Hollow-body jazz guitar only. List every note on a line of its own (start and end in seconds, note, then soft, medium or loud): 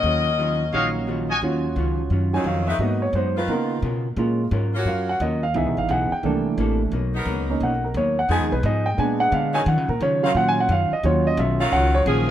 0.04 0.28 D#3 medium
0.04 0.28 F#3 medium
0.04 0.29 C#4 medium
0.04 0.29 F4 medium
0.38 0.62 D#3 medium
0.38 0.62 F#3 medium
0.38 0.63 C#4 medium
0.38 0.63 F4 medium
0.73 0.97 D#3 medium
0.73 0.97 F#3 medium
0.73 0.98 C#4 medium
0.73 0.98 F4 soft
1.07 1.31 D#3 medium
1.07 1.31 F#3 medium
1.07 1.32 C#4 medium
1.07 1.32 F4 medium
1.42 1.66 D#3 soft
1.42 1.66 F#3 medium
1.42 1.67 C#4 medium
1.42 1.67 F4 medium
1.77 2.00 D#3 medium
1.77 2.01 F#3 medium
1.77 2.01 C#4 medium
1.77 2.01 F4 medium
2.11 2.34 D#3 soft
2.11 2.35 F#3 soft
2.11 2.35 C#4 medium
2.11 2.36 F4 medium
2.45 2.69 D#3 medium
2.45 2.69 F#3 medium
2.45 2.69 C#4 medium
2.45 2.70 F4 medium
2.80 3.04 G#2 soft
2.80 3.04 F#3 soft
2.80 3.05 B3 medium
2.80 3.05 D#4 medium
3.15 3.38 G#2 medium
3.15 3.39 F#3 medium
3.15 3.39 B3 medium
3.15 3.39 D#4 medium
3.49 3.72 C#3 soft
3.49 3.73 B3 soft
3.49 3.73 F4 soft
3.49 3.74 A#4 medium
3.82 4.06 C#3 medium
3.82 4.07 B3 medium
3.82 4.07 F4 medium
3.82 4.07 A#4 medium
4.17 4.41 F#3 medium
4.17 4.41 C#4 medium
4.17 4.42 F4 medium
4.17 4.42 A#4 medium
4.51 4.75 F#3 medium
4.51 4.75 C#4 medium
4.51 4.76 F4 medium
4.51 4.76 A#4 medium
4.85 5.09 F#3 soft
4.85 5.10 C#4 soft
4.85 5.10 F4 soft
4.85 5.11 A#4 soft
5.21 5.44 F#3 medium
5.21 5.44 C#4 medium
5.21 5.45 F4 medium
5.21 5.45 A#4 medium
5.55 5.79 C#3 soft
5.55 5.79 B3 soft
5.55 5.79 E4 medium
5.55 5.80 G#4 medium
5.89 6.13 C#3 medium
5.89 6.13 B3 medium
5.89 6.13 E4 medium
5.89 6.13 G#4 medium
6.23 6.47 C3 soft
6.23 6.47 A#3 soft
6.23 6.48 E4 soft
6.23 6.48 A4 medium
6.59 6.82 C3 medium
6.59 6.82 A#3 medium
6.59 6.82 E4 medium
6.59 6.82 A4 medium
6.92 7.15 B2 medium
6.92 7.16 F#3 medium
6.92 7.16 A#3 medium
6.92 7.16 D#4 medium
7.26 7.50 B2 medium
7.26 7.50 F#3 medium
7.26 7.50 A#3 medium
7.26 7.51 D#4 medium
7.61 7.84 B2 soft
7.61 7.85 F#3 soft
7.61 7.85 A#3 medium
7.61 7.86 D#4 soft
7.96 8.19 B2 medium
7.96 8.19 F#3 medium
7.96 8.19 A#3 medium
7.96 8.20 D#4 medium
8.29 8.53 F3 soft
8.29 8.53 B3 medium
8.29 8.54 D#4 medium
8.29 8.54 G#4 medium
8.64 8.87 F3 medium
8.64 8.88 B3 medium
8.64 8.88 D#4 medium
8.64 8.88 G#4 medium
8.97 9.21 A#2 soft
8.97 9.22 G#3 medium
8.97 9.22 B3 medium
8.97 9.22 D4 medium
9.31 9.55 A#2 medium
9.31 9.56 G#3 medium
9.31 9.56 B3 medium
9.31 9.56 D4 medium
9.67 9.90 D#3 medium
9.67 9.90 F#3 medium
9.67 9.91 C#4 medium
9.67 9.91 F4 medium
10.00 10.24 D#3 medium
10.00 10.24 F#3 medium
10.00 10.25 C#4 medium
10.00 10.25 F4 medium
10.35 10.58 D#3 soft
10.35 10.59 F#3 medium
10.35 10.59 C#4 medium
10.35 10.59 F4 medium
10.69 10.92 D#3 medium
10.69 10.93 F#3 medium
10.69 10.93 C#4 medium
10.69 10.93 F4 medium
11.04 11.27 D#3 medium
11.04 11.27 F#3 medium
11.04 11.28 C#4 medium
11.04 11.28 F4 medium
11.38 11.61 D#3 medium
11.38 11.62 F#3 medium
11.38 11.62 C#4 medium
11.38 11.62 F4 medium
11.71 11.95 D#3 soft
11.71 11.96 F#3 soft
11.71 11.96 C#4 medium
11.71 11.96 F4 medium
12.06 12.30 D#3 medium
12.06 12.30 F#3 medium
12.06 12.30 C#4 medium
12.06 12.31 F4 medium